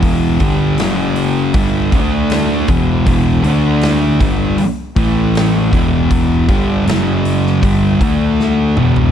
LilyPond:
<<
  \new Staff \with { instrumentName = "Distorted electric guitar" } { \clef bass \time 4/4 \key e \minor \tempo 4 = 79 <e, b, e>8 <g, d g>8 <fis, cis fis>4 <g, d g>8 <d a d'>4 <e, b, e>8 | <e, b, e>8 <d a d'>4 <g, d g>8 r8 <a, e a>4 <e, b, e>8~ | <e, b, e>8 <g, d g>8 <fis, cis fis>4 <g, d g>8 <d a d'>4 <e, b, e>8 | }
  \new Staff \with { instrumentName = "Distorted electric guitar" } { \clef bass \time 4/4 \key e \minor <e, b, e>8 <g, d g>8 <fis, cis fis>4 <g, d g>8 <d a d'>4 <e, b, e>8 | <e, b, e>8 <d a d'>4 <g, d g>8 r8 <a, e a>4 <e, b, e>8~ | <e, b, e>8 <g, d g>8 <fis, cis fis>4 <g, d g>8 <d a d'>4 <e, b, e>8 | }
  \new Staff \with { instrumentName = "Picked electric bass" } { \clef bass \time 4/4 \key e \minor e,,8 g,,8 fis,,4 g,,8 d,4 e,,8 | e,,8 d,4 g,,8 r8 a,,4 e,,8~ | e,,8 g,,8 fis,,4 g,,8 d,4 e,,8 | }
  \new DrumStaff \with { instrumentName = "Drums" } \drummode { \time 4/4 <hho bd>8 <hho bd>8 <hho sn>8 hho8 <hho bd>8 <hho bd>8 <hho sn>8 <hho bd>8 | <hho bd>8 hho8 <hho sn>8 <hho bd>8 hho8 <hho bd>8 <hho sn>8 <hho bd>8 | <hho bd>8 <hho bd>8 <hho sn>8 hho16 sn16 <hho bd>8 <hho bd>8 sn8 toml16 tomfh16 | }
>>